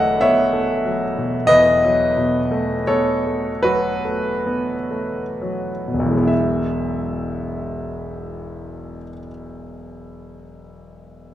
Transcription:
0.00 1.45 E1 medium
0.00 1.42 E2 medium
0.00 1.18 B2 medium
0.00 0.85 F#3 medium
0.00 0.53 A3 medium
0.00 0.22 B3 medium
0.00 1.49 B4 loud
0.00 0.22 C#5 medium
0.00 1.47 D#5 loud
0.00 0.21 E5 loud
0.00 0.22 F#5 loud
0.21 0.72 B3 medium
0.21 1.44 C#5 medium
0.21 1.48 E5 loud
0.53 1.04 A3 medium
0.85 1.36 F#3 medium
1.18 1.69 B2 medium
1.47 6.26 E2 medium
1.47 2.82 B4 medium
1.47 2.85 D#5 loud
1.84 2.38 F#3 medium
2.17 2.73 B2 soft
2.51 3.09 A3 medium
2.87 3.48 B3 medium
2.87 3.60 A4 medium
2.87 3.63 C#5 medium
3.27 3.89 A3 soft
3.63 4.29 F#3 medium
3.63 6.26 F#4 medium
3.63 6.30 B4 loud
4.05 4.74 A3 medium
4.46 5.21 B3 medium
4.91 5.69 A3 soft
5.42 6.14 F#3 soft
5.88 6.30 B2 soft
5.94 8.95 E1 medium
5.99 9.01 B1 medium
6.06 9.07 E3 medium
6.11 9.13 G#3 medium
6.17 9.19 B3 medium
6.23 9.25 E4 medium
6.28 9.29 E5 medium

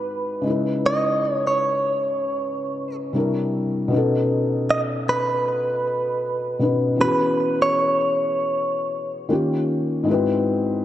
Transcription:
0.00 0.39 G#2 medium
0.00 0.40 G#3 medium
0.00 0.41 C4 medium
0.00 0.42 E4 medium
0.00 0.43 F#4 medium
0.00 0.43 B4 medium
0.00 0.86 B4 medium
0.42 3.09 C#3 medium
0.42 3.10 G#3 medium
0.42 3.11 D#4 medium
0.47 3.12 E4 medium
0.47 3.13 B4 medium
0.86 1.34 D#5 loud
1.34 1.47 C#5 loud
1.47 2.96 C#5 medium
3.13 3.91 C3 medium
3.13 3.91 G3 medium
3.13 3.92 D4 medium
3.13 3.92 E4 medium
3.13 3.93 A#4 medium
3.88 6.55 B2 medium
3.88 6.56 B3 medium
3.88 6.57 C#4 medium
3.94 6.58 D#4 medium
3.94 6.59 A4 medium
4.71 4.81 D#5 loud
5.09 7.00 B4 loud
6.59 6.98 B2 medium
6.59 6.96 B3 medium
6.59 6.98 C#4 medium
6.59 7.00 D#4 medium
6.59 7.00 B4 medium
6.96 9.24 E3 medium
6.96 9.25 B3 medium
6.96 9.26 C#4 medium
7.01 9.27 F#4 medium
7.01 9.28 G#4 medium
7.01 7.62 B4 loud
7.62 9.11 C#5 medium
9.29 10.06 D#3 medium
9.29 10.07 A#3 medium
9.29 10.07 C#4 medium
9.29 10.08 F4 medium
9.33 10.08 G4 medium
10.03 10.85 G#2 medium
10.03 10.85 G#3 medium
10.03 10.14 B3 medium
10.08 10.85 E4 medium
10.08 10.85 F#4 medium
10.08 10.85 B4 medium
10.13 10.85 C4 medium

